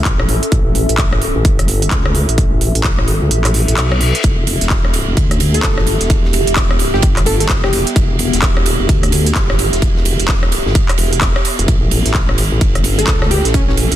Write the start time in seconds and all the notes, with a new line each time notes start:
Already playing: C#4 A4 E5
0.05 A1, kick, clap, closed hi-hat
0.19 cross-stick
0.29 open hi-hat
0.43 closed hi-hat
0.52 A1, kick, closed hi-hat
0.75 open hi-hat
0.89 A1, closed hi-hat
0.98 kick, clap, closed hi-hat
1.13 cross-stick
1.22 open hi-hat
1.36 A1
1.45 G1, kick, closed hi-hat
1.59 cross-stick, closed hi-hat
1.68 open hi-hat
1.82 closed hi-hat
1.91 C#2, kick, clap, closed hi-hat
2.06 cross-stick
2.15 open hi-hat
2.29 A1, closed hi-hat
2.38 kick, closed hi-hat
2.61 A1, open hi-hat
2.75 A1, closed hi-hat
2.84 kick, clap, closed hi-hat
2.99 cross-stick
3.08 open hi-hat
3.22 C#2
3.31 A1, closed hi-hat, reverse cymbal
3.45 cross-stick, clap, closed hi-hat
3.54 open hi-hat
3.68 A1, closed hi-hat
3.77 B1, clap, closed hi-hat
3.92 cross-stick
4.01 open hi-hat
4.15 closed hi-hat
4.24 E1 B3, kick, closed hi-hat, ride
4.47 open hi-hat, ride
4.61 E1 G4, snare, closed hi-hat
4.70 kick, snare, clap, closed hi-hat, ride
4.85 cross-stick
4.94 open hi-hat, ride
5.08 E1
5.17 D2, kick, closed hi-hat, ride
5.31 cross-stick, closed hi-hat, ride
5.40 open hi-hat, ride
5.54 A4, closed hi-hat
5.63 G1 A4, kick, snare, clap, closed hi-hat, ride
5.78 cross-stick, snare
5.87 open hi-hat, ride
6.00 E1, snare, closed hi-hat
6.10 kick, closed hi-hat, ride
6.24 snare
6.33 E1, open hi-hat, ride
6.47 E1, closed hi-hat, ride
6.56 kick, snare, clap, closed hi-hat, ride
6.71 cross-stick
6.79 open hi-hat, ride
6.94 G1 G4, snare
7.02 G1, kick, closed hi-hat, ride
7.17 cross-stick, clap, closed hi-hat
7.26 A4, open hi-hat, ride
7.40 A4, closed hi-hat
7.49 E1, kick, snare, clap, closed hi-hat, ride
7.63 G4, cross-stick, snare
7.73 open hi-hat, ride
7.87 closed hi-hat
7.96 E1, kick, closed hi-hat, ride
8.19 open hi-hat, ride
8.33 E1, snare, closed hi-hat
8.41 kick, snare, clap, closed hi-hat, ride
8.57 cross-stick
8.66 open hi-hat, ride
8.80 E1
8.89 D2, kick, closed hi-hat, ride
9.03 cross-stick, closed hi-hat, ride
9.12 open hi-hat, ride
9.26 closed hi-hat
9.35 G1, kick, snare, clap, closed hi-hat, ride
9.50 cross-stick, snare
9.59 open hi-hat, ride
9.73 E1, snare, closed hi-hat
9.82 kick, closed hi-hat, ride
9.96 snare
10.05 E1, open hi-hat, ride
10.20 E1, closed hi-hat, ride
10.28 kick, snare, clap, closed hi-hat, ride
10.43 cross-stick
10.52 open hi-hat, ride
10.66 G1, snare
10.75 kick, closed hi-hat, ride
10.89 cross-stick, clap, closed hi-hat
10.98 E1, open hi-hat, ride
11.13 closed hi-hat
11.21 kick, snare, clap, closed hi-hat, ride
11.35 cross-stick, snare
11.45 open hi-hat, ride
11.59 E1, closed hi-hat
11.68 A1 C#4, kick, closed hi-hat, ride
11.91 open hi-hat, ride
11.99 A4
12.05 A1, snare, closed hi-hat
12.14 kick, snare, clap, closed hi-hat, ride
12.29 cross-stick
12.38 open hi-hat, ride
12.52 A1
12.61 G1, kick, closed hi-hat, ride
12.75 cross-stick, closed hi-hat, ride
12.84 open hi-hat, ride
12.99 A4, closed hi-hat
13.07 C#2 A4, kick, snare, clap, closed hi-hat, ride
13.22 cross-stick, snare
13.31 G4, open hi-hat, ride
13.45 A1, snare, closed hi-hat
13.54 C#4, kick, closed hi-hat, ride
13.68 C#4, snare
13.77 A1, open hi-hat, ride
13.92 A1, closed hi-hat, ride